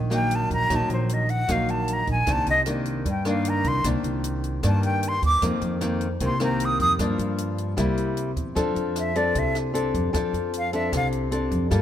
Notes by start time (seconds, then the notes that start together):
Already playing: A#1 D#3
0.10 F#3 A#3 D#4, cross-stick, closed hi-hat
0.14 G5
0.31 closed hi-hat
0.35 A5
0.50 A#1 A#5, kick, closed hi-hat
0.70 A#1 D#3 F#3 A#3 D#4, kick, cross-stick, closed hi-hat
0.76 A5
0.89 A#1, closed hi-hat
0.93 C5
1.09 closed hi-hat
1.14 D#5
1.29 F#5, closed hi-hat
1.48 A#1 D#3 F#3 A#3 D#4 F5, kick, cross-stick, closed hi-hat
1.68 A5, closed hi-hat
1.88 closed hi-hat
1.93 A#5
2.07 A#1, kick, closed hi-hat
2.12 G#5
2.27 C2 C3 D#3 A#3 D4, kick, cross-stick, closed hi-hat
2.32 A5
2.46 C2 D#5, closed hi-hat
2.66 D#3 A#3 D4, cross-stick, closed hi-hat
2.85 closed hi-hat
3.05 G2, kick, closed hi-hat
3.10 G5
3.25 D#3 A#3 D4 F5, cross-stick, closed hi-hat
3.45 closed hi-hat
3.49 A#5
3.64 C2 C6, kick, closed hi-hat
3.84 C2 C3 D#3 A#3 D4, kick, cross-stick, closed hi-hat
4.03 C2, closed hi-hat
4.24 closed hi-hat
4.44 closed hi-hat
4.63 G2 D#3 A#3 D4, kick, cross-stick, closed hi-hat
4.67 A5
4.83 G5, closed hi-hat
5.03 closed hi-hat
5.08 C6
5.22 D#2 D6, kick, closed hi-hat
5.42 F2 D#3 A#3 C4, kick, cross-stick, closed hi-hat
5.61 F2, closed hi-hat
5.81 D#3 A#3 C4, cross-stick, closed hi-hat
6.01 closed hi-hat
6.20 C2 C3 D#3 A#3 C4, kick, closed hi-hat
6.26 C6
6.40 D#3 A#3 C4 A#5, cross-stick, closed hi-hat
6.60 closed hi-hat
6.65 D#6
6.80 F2 D#6, kick, closed hi-hat
6.99 G2 F3 A#3 D4, kick, cross-stick, closed hi-hat
7.18 G2, closed hi-hat
7.38 closed hi-hat
7.58 closed hi-hat
7.77 C2 C3 G3 A#3 E4, kick, cross-stick, closed hi-hat
7.97 closed hi-hat
8.17 closed hi-hat
8.36 E2, kick, closed hi-hat
8.55 F2 F3 C4 D4 A4, kick, cross-stick, closed hi-hat
8.75 F2, closed hi-hat
8.96 E5, cross-stick, closed hi-hat
9.15 C4 D4 A4 D5, closed hi-hat
9.35 C2 C3 E5, kick, closed hi-hat
9.55 cross-stick, closed hi-hat
9.74 C4 D4 A4, closed hi-hat
9.94 F2, kick, closed hi-hat
10.13 F2 F3 C4 D4 A4, kick, cross-stick, closed hi-hat
10.33 F2, closed hi-hat
10.53 closed hi-hat
10.58 F5
10.73 C4 D4 A4 E5, closed hi-hat
10.92 C2 C3, kick, cross-stick, closed hi-hat
10.96 F5
11.12 closed hi-hat
11.31 C4 D4 A4, closed hi-hat
11.51 F2, kick, closed hi-hat
11.71 G2 G3 A#3 F4 A4, kick, cross-stick, closed hi-hat